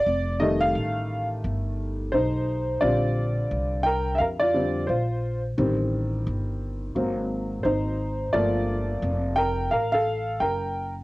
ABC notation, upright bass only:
X:1
M:4/4
L:1/8
Q:"Swing 16ths" 1/4=87
K:Bb
V:1 name="Upright bass" clef=bass
F,,,2 A,,,2 G,,,2 _C,,2 | B,,,2 C,,2 F,,2 B,,,2 | A,,,2 G,,,2 _A,,,2 A,,,2 | G,,,2 F,,,2 A,,,2 _G,,,2 |]